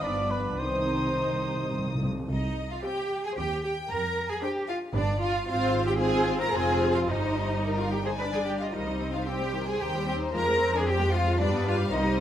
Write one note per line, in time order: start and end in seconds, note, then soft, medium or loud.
0.03 0.60 G1 soft
0.03 0.59 G2 soft
0.03 0.61 F3 soft
0.03 0.60 B3 soft
0.03 0.60 D4 soft
0.03 0.32 D5 medium
0.03 0.61 B5 soft
0.31 0.61 B4 medium
0.31 0.39 B4 soft
0.59 2.07 C2 soft
0.59 2.07 C3 soft
0.59 0.68 C3 soft
0.59 2.02 D#3 soft
0.59 2.02 C4 soft
0.59 2.03 D#4 soft
0.59 2.02 C5 medium
0.59 2.00 C5 soft
0.59 2.07 D#6 soft
0.77 0.84 C3 soft
0.85 0.92 C3 soft
0.94 1.00 C3 soft
1.01 1.08 C3 soft
1.09 1.16 C3 soft
1.17 1.24 C3 soft
1.25 1.32 C3 soft
1.33 1.39 C3 soft
1.41 1.47 C3 soft
1.48 1.55 C3 soft
1.56 1.63 C3 soft
1.64 1.70 C3 soft
1.72 1.78 C3 soft
1.79 1.85 C3 soft
1.87 1.94 C3 medium
1.95 2.02 C3 medium
2.03 2.09 C3 medium
2.11 2.18 C3 medium
2.19 2.26 C3 medium
2.30 2.73 C2 medium
2.30 2.68 D#4 medium
2.30 2.68 D#5 medium
2.71 2.84 F4 medium
2.71 2.84 F5 medium
2.84 3.24 C4 soft
2.84 3.23 G4 medium
2.84 3.24 G4 soft
2.84 3.24 C5 medium
2.84 3.23 G5 medium
3.24 3.37 G#4 medium
3.24 3.30 G#5 medium
3.37 3.79 D#2 medium
3.37 3.76 C4 medium
3.37 3.62 G4 medium
3.37 3.76 G4 soft
3.37 3.76 C5 medium
3.37 3.63 G5 medium
3.63 3.71 G4 medium
3.63 3.89 G5 medium
3.90 4.31 F2 medium
3.90 4.28 A#4 medium
3.90 4.29 A#5 medium
4.29 4.43 G#4 medium
4.29 4.42 G#5 soft
4.42 4.82 D4 medium
4.42 4.69 G4 medium
4.42 4.82 G#4 medium
4.42 4.81 C5 medium
4.42 4.50 G5 medium
4.69 4.77 F4 medium
4.69 4.77 F5 medium
4.95 5.37 G1 medium
4.95 5.34 D4 medium
4.95 5.21 D4 medium
4.95 5.34 G4 medium
4.95 5.34 B4 medium
4.95 5.20 D5 medium
5.21 5.47 F4 medium
5.21 5.47 F5 medium
5.47 6.50 G#1 medium
5.47 5.96 C4 medium
5.47 5.86 F4 medium
5.47 5.96 F4 medium
5.47 5.96 C5 medium
5.47 5.86 F5 medium
5.87 6.00 G4 medium
5.87 5.92 G5 medium
5.99 6.52 C4 medium
5.99 6.53 F4 medium
5.99 6.39 G#4 medium
5.99 6.52 C5 medium
5.99 6.39 G#5 medium
6.40 6.53 A#4 medium
6.40 6.53 A#5 medium
6.53 7.07 F1 medium
6.53 7.07 C4 medium
6.53 7.07 F4 medium
6.53 6.94 G#4 medium
6.53 7.07 C5 medium
6.53 6.94 G#5 medium
6.94 7.09 F4 medium
6.94 6.99 F5 medium
7.08 8.53 G1 medium
7.08 8.16 G3 medium
7.08 7.77 D#4 medium
7.08 8.19 D#4 medium
7.08 7.56 C5 medium
7.08 7.75 D#5 medium
7.63 8.01 A#4 medium
7.77 7.91 F4 medium
7.77 7.90 F5 soft
7.91 7.97 G4 medium
7.91 8.05 G5 medium
8.04 8.11 G#4 medium
8.04 8.19 C5 soft
8.04 8.18 G#5 medium
8.18 8.52 G3 soft
8.18 8.53 D4 soft
8.18 8.24 B4 medium
8.18 8.59 D5 medium
8.18 8.32 B5 medium
8.32 8.39 G#4 medium
8.32 8.45 G#5 medium
8.46 8.59 G4 medium
8.46 8.51 G5 medium
8.59 8.74 F4 medium
8.59 8.66 D#5 soft
8.59 8.64 F5 soft
8.72 9.76 C2 medium
8.72 8.86 D#3 soft
8.72 8.86 G3 soft
8.72 9.13 D#4 medium
8.72 11.36 C5 medium
8.72 9.12 D#5 medium
8.87 9.00 G3 soft
9.00 9.13 C4 soft
9.13 9.26 D#4 soft
9.13 9.27 F4 medium
9.13 9.27 F5 medium
9.26 9.40 C4 medium
9.26 9.66 G4 medium
9.26 9.67 G5 medium
9.40 9.53 G3 soft
9.53 9.67 D#3 soft
9.67 9.80 G3 soft
9.67 9.81 G#4 medium
9.67 9.80 G#5 medium
9.80 10.34 D#2 medium
9.80 9.93 D#3 soft
9.80 10.07 G4 medium
9.80 10.06 G5 medium
9.94 10.07 G3 soft
10.07 10.21 C4 soft
10.07 10.16 G4 medium
10.07 10.15 G5 medium
10.21 10.34 D#4 medium
10.33 11.39 F2 medium
10.33 10.46 F3 medium
10.33 10.45 G#3 soft
10.33 10.73 A#4 medium
10.33 10.73 A#5 medium
10.46 10.60 G#3 soft
10.60 10.73 C4 medium
10.73 10.86 D4 medium
10.73 10.88 G#4 medium
10.73 10.87 G#5 medium
10.86 11.00 C4 medium
10.86 11.14 G4 medium
10.86 11.13 G5 medium
10.99 11.13 G#3 medium
11.14 11.27 F3 medium
11.14 11.39 F4 medium
11.14 11.40 F5 medium
11.26 11.39 G#3 medium
11.40 11.91 G2 medium
11.40 12.03 G3 medium
11.40 11.66 D4 medium
11.40 11.92 B4 medium
11.40 11.65 D5 medium
11.53 11.66 B3 medium
11.65 11.78 D4 medium
11.65 11.74 F4 medium
11.65 11.91 F5 medium
11.78 11.91 G4 medium
11.91 12.20 C2 medium
11.91 12.03 D#3 medium
11.91 12.20 D#4 medium
11.91 12.20 C5 medium
11.91 12.20 D#5 medium
12.05 12.17 G3 medium
12.16 12.20 C4 medium